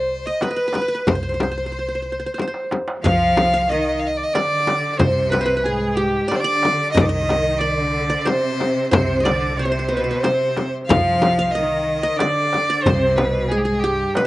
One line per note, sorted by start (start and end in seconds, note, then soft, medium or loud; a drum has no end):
0.00 0.27 C2 medium
0.00 0.24 G4 soft
0.00 0.27 C5 medium
0.00 0.49 C5 medium
0.00 0.33 D5 medium
0.26 0.44 D#5 medium
0.26 1.22 D#5 medium
0.41 1.10 B4 medium
0.41 0.50 B4 medium
0.41 darbuka tek medium
0.41 frame drum medium
0.51 0.56 B4 medium
0.56 0.67 B4 medium
0.68 0.73 B4 medium
0.73 0.81 B4 medium
0.73 darbuka tek medium
0.73 frame drum medium
0.82 0.88 B4 soft
0.88 0.94 B4 medium
0.95 1.13 B4 soft
1.07 2.24 C2 medium
1.07 1.15 C5 medium
1.07 2.72 C5 medium
1.07 darbuka dum medium
1.07 frame drum medium
1.15 1.22 C5 soft
1.23 1.29 C5 soft
1.29 1.34 C5 soft
1.34 1.42 C5 soft
1.40 1.51 C5 soft
1.40 darbuka tek medium
1.40 frame drum medium
1.52 1.57 C5 soft
1.58 1.66 C5 soft
1.66 1.72 C5 soft
1.72 1.78 C5 soft
1.79 1.88 C5 soft
1.88 1.95 C5 soft
1.95 2.02 C5 soft
2.02 2.12 C5 soft
2.02 darbuka ka soft
2.12 2.19 C5 soft
2.20 2.26 C5 soft
2.26 2.34 C5 soft
2.34 2.41 C5 soft
2.38 2.47 C5 soft
2.38 darbuka tek soft
2.38 frame drum medium
2.47 3.53 C5 soft
2.54 darbuka ka medium
2.71 darbuka tek medium
2.71 frame drum medium
2.88 darbuka ka medium
3.03 4.21 C2 medium
3.03 3.66 F3 loud
3.03 3.71 F5 medium
3.03 3.53 F5 medium
3.03 darbuka dum medium
3.03 frame drum medium
3.37 darbuka tek medium
3.37 frame drum medium
3.54 4.42 F5 medium
3.69 3.99 D#3 medium
3.69 4.01 D#5 medium
3.69 4.41 D#5 medium
3.99 4.08 F5 medium
4.07 4.18 D#5 medium
4.17 4.25 D5 medium
4.24 4.35 D#5 medium
4.34 4.97 D3 medium
4.34 4.93 D5 loud
4.34 5.33 D5 medium
4.34 darbuka tek medium
4.34 frame drum medium
4.67 darbuka tek medium
4.67 frame drum medium
4.93 5.00 D5 medium
4.99 6.16 C2 loud
4.99 5.66 C3 medium
4.99 5.31 C5 medium
4.99 5.38 C5 medium
4.99 frame drum loud
4.99 darbuka dum medium
5.30 5.66 B4 medium
5.30 5.45 B4 medium
5.30 frame drum medium
5.34 darbuka tek medium
5.41 5.52 C5 medium
5.46 5.56 B4 medium
5.57 6.66 B4 medium
5.64 6.32 G#2 medium
5.64 5.96 G#4 medium
5.64 6.03 G#4 medium
5.95 6.29 G4 medium
5.95 7.22 G4 medium
6.28 6.37 D5 loud
6.28 6.44 D5 medium
6.28 darbuka tek medium
6.32 6.45 D3 medium
6.32 6.42 C5 medium
6.32 frame drum medium
6.40 6.91 D5 loud
6.40 7.00 D5 medium
6.46 6.94 D3 medium
6.63 darbuka tek medium
6.63 frame drum medium
6.92 7.02 D#5 medium
6.92 7.09 D#5 medium
6.92 darbuka dum loud
6.97 8.13 C2 loud
6.97 7.11 D#3 medium
6.97 7.07 D5 medium
6.97 frame drum loud
7.06 7.60 D#5 loud
7.06 7.67 D#5 medium
7.12 7.60 D#3 medium
7.29 darbuka tek medium
7.29 frame drum medium
7.58 8.21 D5 medium
7.58 8.09 D5 medium
7.63 8.28 D3 medium
8.10 9.08 D5 medium
8.21 8.28 D5 medium
8.25 8.92 C3 medium
8.25 8.91 C5 medium
8.25 8.90 C5 loud
8.25 darbuka tek medium
8.25 frame drum medium
8.60 darbuka tek medium
8.60 frame drum medium
8.91 10.09 C2 loud
8.91 9.24 C3 medium
8.91 9.25 C5 medium
8.91 9.59 C5 medium
8.91 darbuka dum medium
8.91 frame drum loud
9.20 9.58 D5 medium
9.20 9.31 D#5 medium
9.25 9.56 D3 medium
9.25 10.24 D5 medium
9.25 darbuka tek medium
9.25 frame drum medium
9.56 9.91 C3 medium
9.56 9.90 C5 medium
9.56 9.65 C5 medium
9.65 9.71 C5 medium
9.72 9.79 C5 medium
9.79 9.88 C5 medium
9.89 10.24 B2 medium
9.89 10.23 B4 medium
9.89 9.96 C5 medium
9.89 darbuka ka soft
9.97 10.03 C5 medium
10.04 10.10 C5 medium
10.11 10.23 C5 medium
10.22 10.73 C3 medium
10.22 10.72 C5 medium
10.22 11.29 C5 medium
10.22 darbuka tek medium
10.22 frame drum medium
10.56 darbuka tek medium
10.56 frame drum medium
10.86 12.05 C2 medium
10.86 11.51 F3 medium
10.86 11.53 F5 medium
10.86 11.38 F5 medium
10.86 darbuka dum medium
10.90 frame drum loud
11.22 darbuka tek medium
11.22 frame drum medium
11.39 12.27 F5 medium
11.51 12.20 D#3 medium
11.51 12.18 D#5 medium
11.51 12.03 D#5 medium
12.03 12.26 D#5 medium
12.17 12.86 D3 medium
12.17 12.84 D5 loud
12.17 12.69 D5 medium
12.17 darbuka tek medium
12.17 frame drum medium
12.53 darbuka tek medium
12.53 frame drum medium
12.70 13.68 D5 medium
12.83 14.02 C2 loud
12.83 13.18 C5 medium
12.83 13.92 C5 medium
12.83 darbuka dum medium
12.83 frame drum medium
12.87 13.19 C3 medium
13.16 13.50 B4 medium
13.16 darbuka tek medium
13.16 frame drum medium
13.21 13.52 B2 medium
13.49 13.64 G#2 medium
13.49 13.59 G#4 medium
13.49 13.65 G#4 medium
13.58 13.64 G4 medium
13.62 13.83 G#2 medium
13.62 13.81 G#4 medium
13.62 13.90 G#4 medium
13.80 14.15 G4 medium
13.84 14.17 G2 medium
13.84 14.27 G4 medium
14.14 14.27 B4 medium
14.14 darbuka tek medium
14.14 frame drum medium
14.18 14.27 B2 medium